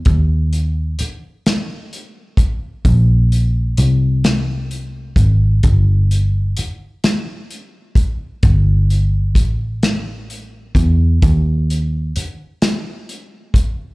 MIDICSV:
0, 0, Header, 1, 4, 480
1, 0, Start_track
1, 0, Tempo, 930233
1, 30, Time_signature, 6, 3, 24, 8
1, 7195, End_track
2, 0, Start_track
2, 0, Title_t, "Picked electric bass"
2, 0, Program_c, 0, 34
2, 32, Note_on_c, 0, 39, 113
2, 491, Note_off_c, 0, 39, 0
2, 1474, Note_on_c, 0, 34, 102
2, 1931, Note_off_c, 0, 34, 0
2, 1952, Note_on_c, 0, 36, 81
2, 2651, Note_off_c, 0, 36, 0
2, 2666, Note_on_c, 0, 32, 95
2, 2887, Note_off_c, 0, 32, 0
2, 2912, Note_on_c, 0, 31, 114
2, 3371, Note_off_c, 0, 31, 0
2, 4356, Note_on_c, 0, 31, 117
2, 4829, Note_off_c, 0, 31, 0
2, 4829, Note_on_c, 0, 33, 80
2, 5529, Note_off_c, 0, 33, 0
2, 5551, Note_on_c, 0, 40, 101
2, 5770, Note_off_c, 0, 40, 0
2, 5795, Note_on_c, 0, 39, 104
2, 6252, Note_off_c, 0, 39, 0
2, 7195, End_track
3, 0, Start_track
3, 0, Title_t, "Muted picked electric bass strokes"
3, 519, Note_on_c, 9, 29, 42
3, 571, Note_off_c, 9, 29, 0
3, 3400, Note_on_c, 9, 29, 46
3, 3452, Note_off_c, 9, 29, 0
3, 6278, Note_on_c, 9, 29, 46
3, 6330, Note_off_c, 9, 29, 0
3, 7195, End_track
4, 0, Start_track
4, 0, Title_t, "Drums"
4, 27, Note_on_c, 9, 42, 70
4, 30, Note_on_c, 9, 36, 118
4, 78, Note_off_c, 9, 42, 0
4, 82, Note_off_c, 9, 36, 0
4, 272, Note_on_c, 9, 42, 52
4, 323, Note_off_c, 9, 42, 0
4, 510, Note_on_c, 9, 42, 84
4, 561, Note_off_c, 9, 42, 0
4, 754, Note_on_c, 9, 42, 79
4, 756, Note_on_c, 9, 38, 123
4, 805, Note_off_c, 9, 42, 0
4, 808, Note_off_c, 9, 38, 0
4, 995, Note_on_c, 9, 42, 49
4, 1046, Note_off_c, 9, 42, 0
4, 1224, Note_on_c, 9, 36, 96
4, 1230, Note_on_c, 9, 42, 68
4, 1276, Note_off_c, 9, 36, 0
4, 1281, Note_off_c, 9, 42, 0
4, 1470, Note_on_c, 9, 36, 112
4, 1470, Note_on_c, 9, 42, 61
4, 1521, Note_off_c, 9, 36, 0
4, 1522, Note_off_c, 9, 42, 0
4, 1713, Note_on_c, 9, 42, 50
4, 1765, Note_off_c, 9, 42, 0
4, 1947, Note_on_c, 9, 42, 81
4, 1999, Note_off_c, 9, 42, 0
4, 2189, Note_on_c, 9, 42, 79
4, 2192, Note_on_c, 9, 38, 120
4, 2241, Note_off_c, 9, 42, 0
4, 2243, Note_off_c, 9, 38, 0
4, 2430, Note_on_c, 9, 42, 45
4, 2481, Note_off_c, 9, 42, 0
4, 2662, Note_on_c, 9, 36, 94
4, 2668, Note_on_c, 9, 42, 67
4, 2714, Note_off_c, 9, 36, 0
4, 2720, Note_off_c, 9, 42, 0
4, 2906, Note_on_c, 9, 42, 67
4, 2908, Note_on_c, 9, 36, 106
4, 2958, Note_off_c, 9, 42, 0
4, 2960, Note_off_c, 9, 36, 0
4, 3153, Note_on_c, 9, 42, 55
4, 3205, Note_off_c, 9, 42, 0
4, 3388, Note_on_c, 9, 42, 78
4, 3440, Note_off_c, 9, 42, 0
4, 3631, Note_on_c, 9, 42, 81
4, 3634, Note_on_c, 9, 38, 117
4, 3683, Note_off_c, 9, 42, 0
4, 3685, Note_off_c, 9, 38, 0
4, 3873, Note_on_c, 9, 42, 44
4, 3924, Note_off_c, 9, 42, 0
4, 4104, Note_on_c, 9, 36, 101
4, 4110, Note_on_c, 9, 42, 65
4, 4156, Note_off_c, 9, 36, 0
4, 4161, Note_off_c, 9, 42, 0
4, 4349, Note_on_c, 9, 42, 67
4, 4350, Note_on_c, 9, 36, 127
4, 4400, Note_off_c, 9, 42, 0
4, 4402, Note_off_c, 9, 36, 0
4, 4594, Note_on_c, 9, 42, 55
4, 4646, Note_off_c, 9, 42, 0
4, 4826, Note_on_c, 9, 36, 89
4, 4830, Note_on_c, 9, 42, 92
4, 4878, Note_off_c, 9, 36, 0
4, 4882, Note_off_c, 9, 42, 0
4, 5071, Note_on_c, 9, 42, 81
4, 5073, Note_on_c, 9, 38, 120
4, 5123, Note_off_c, 9, 42, 0
4, 5125, Note_off_c, 9, 38, 0
4, 5315, Note_on_c, 9, 42, 47
4, 5366, Note_off_c, 9, 42, 0
4, 5546, Note_on_c, 9, 36, 95
4, 5552, Note_on_c, 9, 42, 76
4, 5598, Note_off_c, 9, 36, 0
4, 5604, Note_off_c, 9, 42, 0
4, 5791, Note_on_c, 9, 42, 67
4, 5792, Note_on_c, 9, 36, 127
4, 5843, Note_off_c, 9, 36, 0
4, 5843, Note_off_c, 9, 42, 0
4, 6038, Note_on_c, 9, 42, 58
4, 6090, Note_off_c, 9, 42, 0
4, 6273, Note_on_c, 9, 42, 81
4, 6325, Note_off_c, 9, 42, 0
4, 6511, Note_on_c, 9, 42, 81
4, 6513, Note_on_c, 9, 38, 127
4, 6563, Note_off_c, 9, 42, 0
4, 6565, Note_off_c, 9, 38, 0
4, 6755, Note_on_c, 9, 42, 44
4, 6807, Note_off_c, 9, 42, 0
4, 6986, Note_on_c, 9, 36, 92
4, 6993, Note_on_c, 9, 42, 68
4, 7038, Note_off_c, 9, 36, 0
4, 7045, Note_off_c, 9, 42, 0
4, 7195, End_track
0, 0, End_of_file